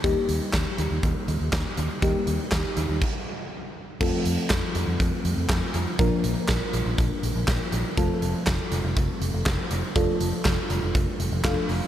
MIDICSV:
0, 0, Header, 1, 4, 480
1, 0, Start_track
1, 0, Tempo, 495868
1, 40, Time_signature, 4, 2, 24, 8
1, 11493, End_track
2, 0, Start_track
2, 0, Title_t, "FM electric piano"
2, 0, Program_c, 0, 5
2, 38, Note_on_c, 0, 55, 77
2, 38, Note_on_c, 0, 58, 71
2, 38, Note_on_c, 0, 63, 71
2, 38, Note_on_c, 0, 67, 84
2, 1920, Note_off_c, 0, 55, 0
2, 1920, Note_off_c, 0, 58, 0
2, 1920, Note_off_c, 0, 63, 0
2, 1920, Note_off_c, 0, 67, 0
2, 1958, Note_on_c, 0, 58, 72
2, 1958, Note_on_c, 0, 63, 71
2, 1958, Note_on_c, 0, 67, 86
2, 1959, Note_on_c, 0, 55, 76
2, 2899, Note_off_c, 0, 67, 0
2, 2900, Note_off_c, 0, 55, 0
2, 2900, Note_off_c, 0, 58, 0
2, 2900, Note_off_c, 0, 63, 0
2, 3878, Note_on_c, 0, 53, 77
2, 3878, Note_on_c, 0, 57, 70
2, 3878, Note_on_c, 0, 65, 70
2, 3878, Note_on_c, 0, 69, 86
2, 3879, Note_on_c, 0, 60, 72
2, 5760, Note_off_c, 0, 53, 0
2, 5760, Note_off_c, 0, 57, 0
2, 5760, Note_off_c, 0, 65, 0
2, 5760, Note_off_c, 0, 69, 0
2, 5761, Note_off_c, 0, 60, 0
2, 5800, Note_on_c, 0, 53, 79
2, 5800, Note_on_c, 0, 58, 69
2, 5800, Note_on_c, 0, 62, 70
2, 5800, Note_on_c, 0, 65, 69
2, 5800, Note_on_c, 0, 70, 87
2, 7681, Note_off_c, 0, 53, 0
2, 7681, Note_off_c, 0, 58, 0
2, 7681, Note_off_c, 0, 62, 0
2, 7681, Note_off_c, 0, 65, 0
2, 7681, Note_off_c, 0, 70, 0
2, 7720, Note_on_c, 0, 53, 76
2, 7720, Note_on_c, 0, 57, 70
2, 7720, Note_on_c, 0, 60, 72
2, 7720, Note_on_c, 0, 65, 70
2, 7720, Note_on_c, 0, 69, 86
2, 9601, Note_off_c, 0, 53, 0
2, 9601, Note_off_c, 0, 57, 0
2, 9601, Note_off_c, 0, 60, 0
2, 9601, Note_off_c, 0, 65, 0
2, 9601, Note_off_c, 0, 69, 0
2, 9639, Note_on_c, 0, 53, 79
2, 9639, Note_on_c, 0, 57, 70
2, 9639, Note_on_c, 0, 62, 71
2, 9639, Note_on_c, 0, 65, 72
2, 9639, Note_on_c, 0, 69, 87
2, 11050, Note_off_c, 0, 53, 0
2, 11050, Note_off_c, 0, 57, 0
2, 11050, Note_off_c, 0, 62, 0
2, 11050, Note_off_c, 0, 65, 0
2, 11050, Note_off_c, 0, 69, 0
2, 11078, Note_on_c, 0, 53, 59
2, 11078, Note_on_c, 0, 57, 54
2, 11078, Note_on_c, 0, 62, 53
2, 11078, Note_on_c, 0, 65, 54
2, 11078, Note_on_c, 0, 69, 66
2, 11079, Note_on_c, 0, 77, 75
2, 11493, Note_off_c, 0, 53, 0
2, 11493, Note_off_c, 0, 57, 0
2, 11493, Note_off_c, 0, 62, 0
2, 11493, Note_off_c, 0, 65, 0
2, 11493, Note_off_c, 0, 69, 0
2, 11493, Note_off_c, 0, 77, 0
2, 11493, End_track
3, 0, Start_track
3, 0, Title_t, "Fingered electric bass"
3, 0, Program_c, 1, 33
3, 39, Note_on_c, 1, 39, 112
3, 133, Note_off_c, 1, 39, 0
3, 278, Note_on_c, 1, 39, 97
3, 372, Note_off_c, 1, 39, 0
3, 520, Note_on_c, 1, 39, 108
3, 614, Note_off_c, 1, 39, 0
3, 759, Note_on_c, 1, 39, 100
3, 853, Note_off_c, 1, 39, 0
3, 879, Note_on_c, 1, 39, 96
3, 973, Note_off_c, 1, 39, 0
3, 1000, Note_on_c, 1, 39, 107
3, 1094, Note_off_c, 1, 39, 0
3, 1240, Note_on_c, 1, 39, 106
3, 1333, Note_off_c, 1, 39, 0
3, 1359, Note_on_c, 1, 39, 93
3, 1453, Note_off_c, 1, 39, 0
3, 1479, Note_on_c, 1, 39, 105
3, 1573, Note_off_c, 1, 39, 0
3, 1719, Note_on_c, 1, 39, 100
3, 1813, Note_off_c, 1, 39, 0
3, 1959, Note_on_c, 1, 39, 108
3, 2053, Note_off_c, 1, 39, 0
3, 2199, Note_on_c, 1, 39, 101
3, 2293, Note_off_c, 1, 39, 0
3, 2441, Note_on_c, 1, 39, 101
3, 2534, Note_off_c, 1, 39, 0
3, 2679, Note_on_c, 1, 39, 107
3, 2773, Note_off_c, 1, 39, 0
3, 2799, Note_on_c, 1, 39, 99
3, 2893, Note_off_c, 1, 39, 0
3, 3879, Note_on_c, 1, 41, 114
3, 3973, Note_off_c, 1, 41, 0
3, 4119, Note_on_c, 1, 41, 98
3, 4213, Note_off_c, 1, 41, 0
3, 4361, Note_on_c, 1, 41, 101
3, 4454, Note_off_c, 1, 41, 0
3, 4599, Note_on_c, 1, 41, 98
3, 4693, Note_off_c, 1, 41, 0
3, 4719, Note_on_c, 1, 41, 96
3, 4813, Note_off_c, 1, 41, 0
3, 4840, Note_on_c, 1, 41, 112
3, 4934, Note_off_c, 1, 41, 0
3, 5079, Note_on_c, 1, 41, 97
3, 5173, Note_off_c, 1, 41, 0
3, 5199, Note_on_c, 1, 41, 100
3, 5293, Note_off_c, 1, 41, 0
3, 5319, Note_on_c, 1, 41, 108
3, 5413, Note_off_c, 1, 41, 0
3, 5559, Note_on_c, 1, 41, 102
3, 5653, Note_off_c, 1, 41, 0
3, 5800, Note_on_c, 1, 34, 106
3, 5893, Note_off_c, 1, 34, 0
3, 6039, Note_on_c, 1, 34, 93
3, 6133, Note_off_c, 1, 34, 0
3, 6281, Note_on_c, 1, 34, 101
3, 6374, Note_off_c, 1, 34, 0
3, 6519, Note_on_c, 1, 34, 99
3, 6613, Note_off_c, 1, 34, 0
3, 6639, Note_on_c, 1, 34, 102
3, 6733, Note_off_c, 1, 34, 0
3, 6760, Note_on_c, 1, 34, 104
3, 6854, Note_off_c, 1, 34, 0
3, 6999, Note_on_c, 1, 34, 96
3, 7093, Note_off_c, 1, 34, 0
3, 7119, Note_on_c, 1, 34, 103
3, 7213, Note_off_c, 1, 34, 0
3, 7239, Note_on_c, 1, 34, 108
3, 7333, Note_off_c, 1, 34, 0
3, 7479, Note_on_c, 1, 34, 97
3, 7573, Note_off_c, 1, 34, 0
3, 7720, Note_on_c, 1, 29, 115
3, 7813, Note_off_c, 1, 29, 0
3, 7959, Note_on_c, 1, 29, 106
3, 8053, Note_off_c, 1, 29, 0
3, 8200, Note_on_c, 1, 29, 105
3, 8294, Note_off_c, 1, 29, 0
3, 8439, Note_on_c, 1, 29, 101
3, 8533, Note_off_c, 1, 29, 0
3, 8559, Note_on_c, 1, 29, 106
3, 8653, Note_off_c, 1, 29, 0
3, 8680, Note_on_c, 1, 29, 110
3, 8773, Note_off_c, 1, 29, 0
3, 8919, Note_on_c, 1, 29, 95
3, 9013, Note_off_c, 1, 29, 0
3, 9039, Note_on_c, 1, 29, 100
3, 9133, Note_off_c, 1, 29, 0
3, 9159, Note_on_c, 1, 29, 112
3, 9253, Note_off_c, 1, 29, 0
3, 9400, Note_on_c, 1, 29, 103
3, 9493, Note_off_c, 1, 29, 0
3, 9639, Note_on_c, 1, 29, 110
3, 9733, Note_off_c, 1, 29, 0
3, 9879, Note_on_c, 1, 29, 100
3, 9973, Note_off_c, 1, 29, 0
3, 10120, Note_on_c, 1, 29, 102
3, 10214, Note_off_c, 1, 29, 0
3, 10359, Note_on_c, 1, 29, 106
3, 10453, Note_off_c, 1, 29, 0
3, 10479, Note_on_c, 1, 29, 98
3, 10573, Note_off_c, 1, 29, 0
3, 10600, Note_on_c, 1, 29, 100
3, 10693, Note_off_c, 1, 29, 0
3, 10839, Note_on_c, 1, 29, 97
3, 10933, Note_off_c, 1, 29, 0
3, 10958, Note_on_c, 1, 29, 98
3, 11052, Note_off_c, 1, 29, 0
3, 11318, Note_on_c, 1, 29, 99
3, 11412, Note_off_c, 1, 29, 0
3, 11493, End_track
4, 0, Start_track
4, 0, Title_t, "Drums"
4, 39, Note_on_c, 9, 36, 120
4, 39, Note_on_c, 9, 42, 76
4, 136, Note_off_c, 9, 36, 0
4, 136, Note_off_c, 9, 42, 0
4, 279, Note_on_c, 9, 42, 82
4, 376, Note_off_c, 9, 42, 0
4, 517, Note_on_c, 9, 38, 125
4, 517, Note_on_c, 9, 39, 99
4, 520, Note_on_c, 9, 36, 112
4, 520, Note_on_c, 9, 42, 78
4, 614, Note_off_c, 9, 38, 0
4, 614, Note_off_c, 9, 39, 0
4, 617, Note_off_c, 9, 36, 0
4, 617, Note_off_c, 9, 42, 0
4, 758, Note_on_c, 9, 42, 78
4, 855, Note_off_c, 9, 42, 0
4, 999, Note_on_c, 9, 42, 67
4, 1000, Note_on_c, 9, 36, 108
4, 1096, Note_off_c, 9, 36, 0
4, 1096, Note_off_c, 9, 42, 0
4, 1241, Note_on_c, 9, 42, 71
4, 1338, Note_off_c, 9, 42, 0
4, 1478, Note_on_c, 9, 36, 127
4, 1480, Note_on_c, 9, 42, 68
4, 1481, Note_on_c, 9, 38, 122
4, 1481, Note_on_c, 9, 39, 109
4, 1575, Note_off_c, 9, 36, 0
4, 1577, Note_off_c, 9, 42, 0
4, 1578, Note_off_c, 9, 38, 0
4, 1578, Note_off_c, 9, 39, 0
4, 1717, Note_on_c, 9, 42, 67
4, 1814, Note_off_c, 9, 42, 0
4, 1959, Note_on_c, 9, 36, 124
4, 1960, Note_on_c, 9, 42, 75
4, 2056, Note_off_c, 9, 36, 0
4, 2057, Note_off_c, 9, 42, 0
4, 2199, Note_on_c, 9, 42, 83
4, 2295, Note_off_c, 9, 42, 0
4, 2437, Note_on_c, 9, 38, 122
4, 2437, Note_on_c, 9, 39, 99
4, 2440, Note_on_c, 9, 36, 114
4, 2440, Note_on_c, 9, 42, 85
4, 2534, Note_off_c, 9, 38, 0
4, 2534, Note_off_c, 9, 39, 0
4, 2537, Note_off_c, 9, 36, 0
4, 2537, Note_off_c, 9, 42, 0
4, 2678, Note_on_c, 9, 42, 79
4, 2775, Note_off_c, 9, 42, 0
4, 2919, Note_on_c, 9, 36, 104
4, 2919, Note_on_c, 9, 49, 91
4, 3016, Note_off_c, 9, 36, 0
4, 3016, Note_off_c, 9, 49, 0
4, 3879, Note_on_c, 9, 36, 127
4, 3879, Note_on_c, 9, 49, 107
4, 3976, Note_off_c, 9, 36, 0
4, 3976, Note_off_c, 9, 49, 0
4, 4119, Note_on_c, 9, 42, 82
4, 4215, Note_off_c, 9, 42, 0
4, 4357, Note_on_c, 9, 38, 127
4, 4357, Note_on_c, 9, 39, 101
4, 4360, Note_on_c, 9, 42, 79
4, 4361, Note_on_c, 9, 36, 116
4, 4454, Note_off_c, 9, 38, 0
4, 4454, Note_off_c, 9, 39, 0
4, 4457, Note_off_c, 9, 36, 0
4, 4457, Note_off_c, 9, 42, 0
4, 4598, Note_on_c, 9, 42, 80
4, 4694, Note_off_c, 9, 42, 0
4, 4839, Note_on_c, 9, 42, 67
4, 4840, Note_on_c, 9, 36, 108
4, 4936, Note_off_c, 9, 42, 0
4, 4937, Note_off_c, 9, 36, 0
4, 5081, Note_on_c, 9, 42, 75
4, 5178, Note_off_c, 9, 42, 0
4, 5319, Note_on_c, 9, 36, 124
4, 5320, Note_on_c, 9, 42, 68
4, 5321, Note_on_c, 9, 38, 126
4, 5321, Note_on_c, 9, 39, 114
4, 5416, Note_off_c, 9, 36, 0
4, 5416, Note_off_c, 9, 42, 0
4, 5417, Note_off_c, 9, 38, 0
4, 5417, Note_off_c, 9, 39, 0
4, 5557, Note_on_c, 9, 42, 70
4, 5654, Note_off_c, 9, 42, 0
4, 5799, Note_on_c, 9, 36, 127
4, 5799, Note_on_c, 9, 42, 77
4, 5896, Note_off_c, 9, 36, 0
4, 5896, Note_off_c, 9, 42, 0
4, 6039, Note_on_c, 9, 42, 84
4, 6136, Note_off_c, 9, 42, 0
4, 6278, Note_on_c, 9, 38, 127
4, 6278, Note_on_c, 9, 39, 98
4, 6281, Note_on_c, 9, 36, 112
4, 6281, Note_on_c, 9, 42, 82
4, 6375, Note_off_c, 9, 38, 0
4, 6375, Note_off_c, 9, 39, 0
4, 6377, Note_off_c, 9, 42, 0
4, 6378, Note_off_c, 9, 36, 0
4, 6518, Note_on_c, 9, 42, 77
4, 6615, Note_off_c, 9, 42, 0
4, 6760, Note_on_c, 9, 36, 108
4, 6760, Note_on_c, 9, 42, 71
4, 6857, Note_off_c, 9, 36, 0
4, 6857, Note_off_c, 9, 42, 0
4, 7001, Note_on_c, 9, 42, 77
4, 7098, Note_off_c, 9, 42, 0
4, 7239, Note_on_c, 9, 36, 123
4, 7240, Note_on_c, 9, 42, 67
4, 7241, Note_on_c, 9, 38, 126
4, 7241, Note_on_c, 9, 39, 111
4, 7336, Note_off_c, 9, 36, 0
4, 7336, Note_off_c, 9, 42, 0
4, 7337, Note_off_c, 9, 38, 0
4, 7337, Note_off_c, 9, 39, 0
4, 7477, Note_on_c, 9, 42, 68
4, 7574, Note_off_c, 9, 42, 0
4, 7719, Note_on_c, 9, 36, 127
4, 7719, Note_on_c, 9, 42, 80
4, 7816, Note_off_c, 9, 36, 0
4, 7816, Note_off_c, 9, 42, 0
4, 7959, Note_on_c, 9, 42, 83
4, 8056, Note_off_c, 9, 42, 0
4, 8198, Note_on_c, 9, 38, 127
4, 8198, Note_on_c, 9, 39, 104
4, 8201, Note_on_c, 9, 36, 118
4, 8201, Note_on_c, 9, 42, 83
4, 8295, Note_off_c, 9, 38, 0
4, 8295, Note_off_c, 9, 39, 0
4, 8297, Note_off_c, 9, 36, 0
4, 8297, Note_off_c, 9, 42, 0
4, 8438, Note_on_c, 9, 42, 79
4, 8535, Note_off_c, 9, 42, 0
4, 8679, Note_on_c, 9, 42, 70
4, 8680, Note_on_c, 9, 36, 109
4, 8776, Note_off_c, 9, 36, 0
4, 8776, Note_off_c, 9, 42, 0
4, 8921, Note_on_c, 9, 42, 77
4, 9018, Note_off_c, 9, 42, 0
4, 9158, Note_on_c, 9, 36, 127
4, 9159, Note_on_c, 9, 42, 72
4, 9160, Note_on_c, 9, 38, 126
4, 9160, Note_on_c, 9, 39, 109
4, 9255, Note_off_c, 9, 36, 0
4, 9256, Note_off_c, 9, 42, 0
4, 9257, Note_off_c, 9, 38, 0
4, 9257, Note_off_c, 9, 39, 0
4, 9397, Note_on_c, 9, 42, 70
4, 9494, Note_off_c, 9, 42, 0
4, 9639, Note_on_c, 9, 36, 127
4, 9639, Note_on_c, 9, 42, 77
4, 9736, Note_off_c, 9, 36, 0
4, 9736, Note_off_c, 9, 42, 0
4, 9879, Note_on_c, 9, 42, 80
4, 9976, Note_off_c, 9, 42, 0
4, 10117, Note_on_c, 9, 38, 126
4, 10117, Note_on_c, 9, 39, 100
4, 10120, Note_on_c, 9, 36, 118
4, 10120, Note_on_c, 9, 42, 83
4, 10214, Note_off_c, 9, 38, 0
4, 10214, Note_off_c, 9, 39, 0
4, 10217, Note_off_c, 9, 36, 0
4, 10217, Note_off_c, 9, 42, 0
4, 10357, Note_on_c, 9, 42, 78
4, 10454, Note_off_c, 9, 42, 0
4, 10599, Note_on_c, 9, 36, 114
4, 10599, Note_on_c, 9, 42, 68
4, 10696, Note_off_c, 9, 36, 0
4, 10696, Note_off_c, 9, 42, 0
4, 10840, Note_on_c, 9, 42, 76
4, 10937, Note_off_c, 9, 42, 0
4, 11078, Note_on_c, 9, 36, 124
4, 11079, Note_on_c, 9, 42, 70
4, 11080, Note_on_c, 9, 38, 126
4, 11080, Note_on_c, 9, 39, 112
4, 11175, Note_off_c, 9, 36, 0
4, 11176, Note_off_c, 9, 42, 0
4, 11177, Note_off_c, 9, 38, 0
4, 11177, Note_off_c, 9, 39, 0
4, 11317, Note_on_c, 9, 46, 70
4, 11414, Note_off_c, 9, 46, 0
4, 11493, End_track
0, 0, End_of_file